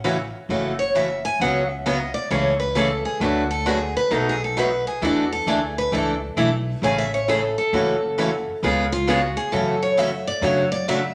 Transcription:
Already playing: upright bass A1
0.04 steel-string acoustic guitar C#3 E3 A3 C#4 F#4
0.49 upright bass F#1, steel-string acoustic guitar C#3 E3 A3 C#4 F#4
0.79 steel-string acoustic guitar C#5
0.95 steel-string acoustic guitar C#3 E3 A3 C#4 F#4 E5
1.25 steel-string acoustic guitar G#5
1.40 upright bass C#2, steel-string acoustic guitar C#3 F#3 B3 C#4 F#4 F#5
1.69 steel-string acoustic guitar E5
1.86 steel-string acoustic guitar C#3 F#3 B3 C#4 F#4 D#5
2.14 steel-string acoustic guitar D5
2.30 upright bass C#2, steel-string acoustic guitar C#3 E3 A3 C#4 G#4 C#5
2.60 steel-string acoustic guitar B4
2.75 steel-string acoustic guitar C#3 E3 A3 C#4 G#4 A4
3.05 steel-string acoustic guitar G#4
3.20 upright bass D2, steel-string acoustic guitar D3 F#3 A3 D4 F#4 B4
3.51 steel-string acoustic guitar A4
3.66 steel-string acoustic guitar D3 F#3 A3 D4 F#4 G#4 B4
3.97 steel-string acoustic guitar B4
4.11 upright bass B1, steel-string acoustic guitar B2 F#3 A3 D#4 F#4 A4
4.29 steel-string acoustic guitar G#4
4.44 steel-string acoustic guitar A4
4.57 steel-string acoustic guitar B2 F#3 A3 D#4 F#4 B4
4.87 steel-string acoustic guitar G#4
5.02 upright bass E2, steel-string acoustic guitar E3 A3 D4 E4 F#4 A4
5.33 steel-string acoustic guitar A4
5.46 upright bass D2, steel-string acoustic guitar E3 A3 D4 E4 G#4 A4
5.78 steel-string acoustic guitar B4
5.92 upright bass C#2, steel-string acoustic guitar E3 A3 D4 E4 A4
6.36 upright bass B1, steel-string acoustic guitar E3 A3 D4 E4 A4
6.82 upright bass A1, steel-string acoustic guitar C#3 E3 A3 C#4 G#4 G#5
6.98 steel-string acoustic guitar E5
7.14 steel-string acoustic guitar C#5
7.28 steel-string acoustic guitar C#3 E3 A3 C#4 G#4 A4
7.58 steel-string acoustic guitar A4
7.73 upright bass F#1, steel-string acoustic guitar C#3 E3 A3 C#4 F#4
8.18 steel-string acoustic guitar C#3 E3 A3 C#4 F#4
8.63 upright bass C#2, steel-string acoustic guitar C#3 G#3 B3 F4 G#4
8.92 steel-string acoustic guitar F4
9.07 steel-string acoustic guitar C#3 G#3 B3 F4 F#4 G#4
9.37 steel-string acoustic guitar G#4
9.52 upright bass F#2, steel-string acoustic guitar C#3 E3 A3 C#4 F#4 A4
9.82 steel-string acoustic guitar C#5
9.97 steel-string acoustic guitar C#3 E3 A3 C#4 F#4 E5
10.27 steel-string acoustic guitar D5
10.41 upright bass F#2, steel-string acoustic guitar C#3 F#3 A3 D4 F#4 C#5
10.72 steel-string acoustic guitar D5
10.88 steel-string acoustic guitar C#3 F#3 A3 D4 F#4 E5

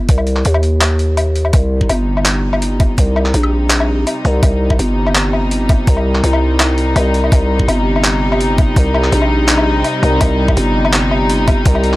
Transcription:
0.09 808-style bass C2, kick, closed hi-hat
0.18 low woodblock
0.27 closed hi-hat
0.36 clap
0.45 808-style bass D#2, closed hi-hat
0.54 low woodblock
0.63 closed hi-hat
0.81 clap, closed hi-hat, low woodblock
0.99 closed hi-hat
1.17 closed hi-hat, low woodblock
1.36 closed hi-hat
1.45 low woodblock
1.53 808-style bass C2, string section C3, kick, closed hi-hat, low woodblock
1.71 string section G3
1.77 string section D#4
1.81 kick
1.89 808-style bass G1, closed hi-hat, low woodblock
2.17 low woodblock
2.25 clap, closed hi-hat
2.53 low woodblock
2.62 closed hi-hat
2.80 kick, closed hi-hat, low woodblock
2.98 808-style bass C2, kick, closed hi-hat
3.16 low woodblock
3.26 clap
3.34 808-style bass A#1, closed hi-hat
3.43 low woodblock
3.70 clap, closed hi-hat
3.80 low woodblock
4.07 closed hi-hat, low woodblock
4.25 808-style bass C2, closed hi-hat
4.43 808-style bass C2, kick, closed hi-hat, low woodblock
4.70 kick, low woodblock
4.79 808-style bass G1, closed hi-hat
5.07 low woodblock
5.15 clap, closed hi-hat
5.33 low woodblock
5.51 closed hi-hat
5.69 kick, closed hi-hat, low woodblock
5.87 808-style bass C2, kick, closed hi-hat
5.97 low woodblock
6.15 clap
6.24 808-style bass C2, closed hi-hat
6.33 low woodblock
6.60 clap, closed hi-hat, low woodblock
6.78 closed hi-hat
6.96 808-style bass C2, closed hi-hat, low woodblock
7.14 closed hi-hat
7.24 low woodblock
7.32 808-style bass C2, kick, closed hi-hat, low woodblock
7.59 kick
7.68 808-style bass G1, closed hi-hat, low woodblock
7.96 low woodblock
8.04 clap, closed hi-hat
8.32 low woodblock
8.40 closed hi-hat
8.58 kick, closed hi-hat, low woodblock
8.76 808-style bass C2, kick, closed hi-hat
8.94 low woodblock
9.04 clap
9.12 808-style bass A#1, closed hi-hat
9.22 low woodblock
9.48 clap, closed hi-hat
9.58 low woodblock
9.84 closed hi-hat, low woodblock
10.03 808-style bass C2, closed hi-hat
10.21 808-style bass C2, kick, closed hi-hat, low woodblock
10.48 kick, low woodblock
10.57 808-style bass G1, closed hi-hat
10.85 low woodblock
10.93 clap, closed hi-hat
11.11 low woodblock
11.30 closed hi-hat
11.48 kick, closed hi-hat, low woodblock
11.65 808-style bass C2, kick, closed hi-hat
11.75 low woodblock
11.84 closed hi-hat

